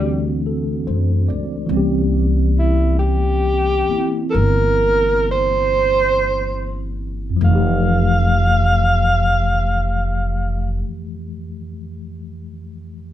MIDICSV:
0, 0, Header, 1, 5, 480
1, 0, Start_track
1, 0, Key_signature, -1, "major"
1, 0, Tempo, 1226994
1, 661, Tempo, 1287554
1, 662, Time_signature, 4, 2, 24, 8
1, 1141, Tempo, 1357466
1, 1621, Tempo, 1466993
1, 2101, Tempo, 1612903
1, 2581, Tempo, 1680672
1, 4214, End_track
2, 0, Start_track
2, 0, Title_t, "Alto saxophone"
2, 0, Program_c, 0, 65
2, 0, Note_on_c, 0, 55, 78
2, 185, Note_off_c, 0, 55, 0
2, 997, Note_on_c, 0, 64, 60
2, 1139, Note_off_c, 0, 64, 0
2, 1145, Note_on_c, 0, 67, 80
2, 1590, Note_off_c, 0, 67, 0
2, 1609, Note_on_c, 0, 69, 58
2, 1617, Note_on_c, 0, 70, 88
2, 1623, Note_off_c, 0, 69, 0
2, 1937, Note_off_c, 0, 70, 0
2, 1941, Note_on_c, 0, 72, 97
2, 2407, Note_off_c, 0, 72, 0
2, 2591, Note_on_c, 0, 77, 74
2, 3562, Note_off_c, 0, 77, 0
2, 4214, End_track
3, 0, Start_track
3, 0, Title_t, "Tine electric piano"
3, 0, Program_c, 1, 4
3, 0, Control_c, 1, 64, 127
3, 0, Note_on_c, 1, 52, 46
3, 0, Note_on_c, 1, 57, 44
3, 0, Note_on_c, 1, 60, 43
3, 0, Note_on_c, 1, 62, 44
3, 0, Note_on_c, 1, 66, 52
3, 181, Note_on_c, 1, 69, 37
3, 341, Note_on_c, 1, 72, 37
3, 487, Note_off_c, 1, 69, 0
3, 503, Note_on_c, 1, 74, 38
3, 594, Note_off_c, 1, 72, 0
3, 647, Note_off_c, 1, 52, 0
3, 652, Note_on_c, 1, 52, 46
3, 662, Note_off_c, 1, 57, 0
3, 662, Note_on_c, 1, 58, 41
3, 664, Note_off_c, 1, 60, 0
3, 667, Note_off_c, 1, 62, 0
3, 667, Control_c, 1, 64, 0
3, 669, Note_off_c, 1, 66, 0
3, 674, Note_on_c, 1, 60, 44
3, 681, Note_on_c, 1, 61, 45
3, 690, Note_on_c, 1, 67, 52
3, 727, Control_c, 1, 64, 127
3, 754, Note_off_c, 1, 74, 0
3, 1460, Note_off_c, 1, 58, 0
3, 1464, Note_on_c, 1, 58, 35
3, 1465, Note_off_c, 1, 60, 0
3, 1469, Note_on_c, 1, 60, 34
3, 1472, Note_on_c, 1, 64, 39
3, 2547, Note_on_c, 1, 41, 51
3, 2566, Note_on_c, 1, 53, 48
3, 2577, Note_off_c, 1, 52, 0
3, 2582, Note_off_c, 1, 58, 0
3, 2584, Note_on_c, 1, 57, 47
3, 2585, Note_off_c, 1, 60, 0
3, 2585, Control_c, 1, 64, 0
3, 2586, Note_off_c, 1, 64, 0
3, 2588, Note_off_c, 1, 61, 0
3, 2592, Note_off_c, 1, 67, 0
3, 2601, Note_on_c, 1, 52, 45
3, 2620, Note_on_c, 1, 67, 54
3, 2637, Control_c, 1, 64, 127
3, 3530, Note_off_c, 1, 41, 0
3, 3549, Note_off_c, 1, 53, 0
3, 3566, Note_off_c, 1, 57, 0
3, 3583, Note_off_c, 1, 52, 0
3, 3602, Note_off_c, 1, 67, 0
3, 4214, End_track
4, 0, Start_track
4, 0, Title_t, "Upright bass"
4, 0, Program_c, 2, 32
4, 0, Note_on_c, 2, 38, 71
4, 322, Note_off_c, 2, 38, 0
4, 342, Note_on_c, 2, 42, 53
4, 490, Note_off_c, 2, 42, 0
4, 507, Note_on_c, 2, 37, 54
4, 655, Note_off_c, 2, 37, 0
4, 661, Note_on_c, 2, 36, 69
4, 1446, Note_off_c, 2, 36, 0
4, 1624, Note_on_c, 2, 31, 73
4, 2570, Note_off_c, 2, 31, 0
4, 2579, Note_on_c, 2, 29, 72
4, 3550, Note_off_c, 2, 29, 0
4, 4214, End_track
5, 0, Start_track
5, 0, Title_t, "Muted upright bass strokes"
5, 1462, Note_on_c, 9, 29, 29
5, 1497, Note_off_c, 9, 29, 0
5, 4214, End_track
0, 0, End_of_file